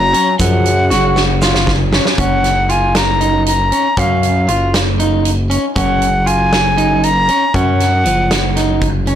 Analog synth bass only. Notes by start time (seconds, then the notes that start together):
Already playing: F#1
0.40 F#2
0.91 F#1
2.18 F#1
3.97 F#2
4.48 F#1
5.76 F#1
7.54 F#2
8.05 F#1